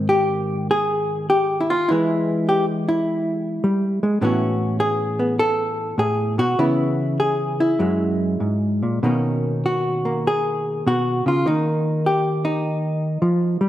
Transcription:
Already playing: G#2 D#3 C4
0.09 G4
0.71 G#4
1.30 G4
1.61 E4
1.70 F4
1.89 E3 G#3 E4
2.49 G4
2.89 E4
3.64 G3
4.03 G#3
4.21 A2 E3 B3 C#4 F#4
4.80 G#4
5.19 B3
5.39 A4
5.98 A2 G#4
6.38 B2 F#4
6.59 C#3 E3 B3 E4
7.20 G#4
7.60 E4
7.79 F#2 F#3 G#3
8.40 G#2
8.83 A#2
9.03 B2 D#3 A#3 C#4
9.66 F#4
10.05 A#3
10.27 G#4
10.87 B2 F#4
11.26 C#3 F4
11.46 D#3 A#3 D#4
12.06 G4
12.45 D#4
13.22 F3
13.61 G3

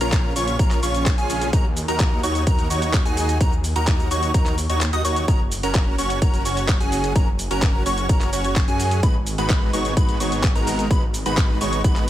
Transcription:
0.01 A#1 C#4 F4 A#4 A#5, closed hi-hat, shaker
0.12 kick, clap, closed hi-hat, shaker
0.36 A#1 C#4 F4 C#5 C#6, open hi-hat, shaker
0.48 closed hi-hat, shaker
0.59 A#1 A#4 A#5, kick, closed hi-hat, shaker
0.71 clap, closed hi-hat, shaker
0.83 A#1 C#4 F4 C#5 C#6, open hi-hat, shaker
0.95 closed hi-hat, shaker
1.06 kick, clap, closed hi-hat, shaker
1.18 A#1 C#4 F4 G#4 G#5, closed hi-hat, shaker
1.30 open hi-hat, shaker
1.41 closed hi-hat, shaker
1.53 D#2 D#4 F#4 A#4 A#5, kick, closed hi-hat, shaker
1.77 open hi-hat, shaker
1.88 D#2 D#4 F#4 A#4 A#5, closed hi-hat, shaker
2.00 kick, clap, closed hi-hat, shaker
2.23 D#2 D#4 F#4 C#5 C#6, open hi-hat, shaker
2.35 closed hi-hat, shaker
2.47 D#2 D#4 A#4 A#5, kick, closed hi-hat, shaker
2.59 closed hi-hat, shaker
2.70 D#2 D#4 F#4 C#5 C#6, open hi-hat, shaker
2.82 closed hi-hat, shaker
2.93 kick, clap, closed hi-hat, shaker
3.05 D#2 D#4 F#4 G#4 G#5, closed hi-hat, shaker
3.17 open hi-hat, shaker
3.29 closed hi-hat, shaker
3.41 D#2 A#5, kick, closed hi-hat, shaker
3.53 shaker
3.64 open hi-hat, shaker
3.76 D#2 D#4 F#4 A#4 A#5, closed hi-hat, shaker
3.87 kick, clap, closed hi-hat, shaker
4.00 shaker
4.11 D#2 D#4 F#4 C#5 C#6, open hi-hat, shaker
4.23 closed hi-hat, shaker
4.34 D#2 F#4 A#4 A#5, kick, closed hi-hat, shaker
4.46 clap, closed hi-hat, shaker
4.58 open hi-hat, shaker
4.70 D#2 D#4 F#4 C#5 C#6, closed hi-hat, shaker
4.81 clap, closed hi-hat, shaker
4.93 D#2 D#4 F#4 D#5 D#6, closed hi-hat, shaker
5.05 D#2 D#4 F#4 C#5 C#6, open hi-hat, shaker
5.16 closed hi-hat, shaker
5.28 F#1 C#4 F#4 A#4 A#5, kick, closed hi-hat, shaker
5.52 open hi-hat, shaker
5.63 F#1 C#4 F#4 A#4 A#5, closed hi-hat, shaker
5.75 kick, clap, closed hi-hat, shaker
5.98 F#1 C#4 F#4 C#5 C#6, open hi-hat, shaker
6.10 closed hi-hat, shaker
6.22 F#1 F#4 A#4 A#5, kick, closed hi-hat, shaker
6.34 closed hi-hat, shaker
6.45 F#1 C#4 F#4 C#5 C#6, open hi-hat, shaker
6.57 closed hi-hat, shaker
6.68 kick, clap, closed hi-hat, shaker
6.80 F#1 C#4 F#4 G#4 G#5, closed hi-hat, shaker
6.92 open hi-hat, shaker
7.04 closed hi-hat, shaker
7.16 F#1 C#4 F#4 A#4 A#5, kick, closed hi-hat, shaker
7.39 open hi-hat, shaker
7.51 F#1 C#4 F#4 A#4 A#5, closed hi-hat, shaker
7.62 kick, clap, closed hi-hat, shaker
7.86 F#1 C#4 F#4 C#5 C#6, open hi-hat, shaker
7.98 closed hi-hat, shaker
8.09 F#1 A#4 A#5, kick, closed hi-hat, shaker
8.21 clap, closed hi-hat, shaker
8.33 F#1 C#4 F#4 C#5 C#6, open hi-hat, shaker
8.44 closed hi-hat, shaker
8.56 kick, clap, closed hi-hat, shaker
8.68 F#2 C#4 F#4 G#4 G#5, closed hi-hat, shaker
8.80 open hi-hat, shaker
8.91 closed hi-hat, shaker
9.03 G#1 G#3 B3 D#4 B4 B5, kick, closed hi-hat, shaker
9.27 open hi-hat, shaker
9.38 G#1 G#3 B3 D#4 F#4 B4 B5, closed hi-hat, shaker
9.50 kick, clap, closed hi-hat, shaker
9.73 G#1 G#3 B3 D#4 F#4 C#5 C#6, open hi-hat, shaker
9.85 closed hi-hat, shaker
9.97 G#1 G#3 B3 F#4 B4 B5, kick, closed hi-hat, shaker
10.09 closed hi-hat, shaker
10.20 G#1 G#3 B3 D#4 F#4 C#5 C#6, open hi-hat, shaker
10.32 closed hi-hat, shaker
10.43 kick, clap, closed hi-hat, shaker
10.55 G#1 G#3 B3 D#4 F#4 A#4 A#5, closed hi-hat, shaker
10.67 open hi-hat, shaker
10.79 closed hi-hat, shaker
10.91 G#1 G#3 B3 B4 B5, kick, closed hi-hat, shaker
11.14 open hi-hat, shaker
11.26 G#1 G#3 B3 D#4 F#4 B4 B5, closed hi-hat, shaker
11.37 kick, clap, closed hi-hat, shaker
11.61 G#1 G#3 B3 D#4 F#4 C#5 C#6, open hi-hat, shaker
11.73 closed hi-hat, shaker
11.84 G#1 G#3 B3 D#4 F#4 B5, kick, closed hi-hat, shaker
11.96 clap, closed hi-hat, shaker

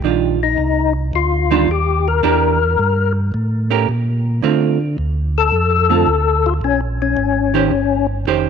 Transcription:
0.02 A#1 D#3 G3 D4 F4
0.43 D#4
0.58 C2
1.13 D2 F4
1.51 D#3 G3 D4 F4
1.68 D#2 G4
2.08 A#4
2.23 E2 E3 D4 G4 A#4
2.79 G2
3.34 A2
3.70 A3 C#4 G4 A#4
3.89 A#2
4.42 D3 A3 C4 F4
4.98 D2
5.38 A4
5.52 F2
5.89 D3 A3 C4 F4
6.07 D2
6.46 F4
6.61 A#1 C#4
7.02 C#4
7.17 G#1
7.54 D#3 C#4 G4 C5
7.71 G1
8.26 F1 D#3 C#4 G4 C5

